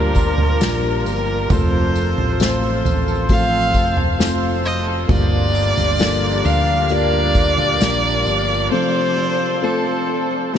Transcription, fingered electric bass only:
Already playing: D2
0.61 A#1
1.06 G1
1.51 F1
2.18 A1
2.85 A1
3.75 F1
5.09 G1
5.77 G1
6.45 D2
7.81 A#1
8.26 G1

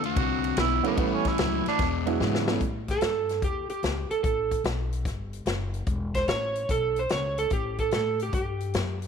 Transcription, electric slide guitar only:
2.91 A4
3.44 G4
3.70 G4
4.11 A4
4.23 A4
6.15 C5
6.28 C#5
6.71 A4
6.99 C5
7.12 C#5
7.39 A4
7.53 G4
7.80 A4
7.94 A4
8.23 G4
8.34 G4

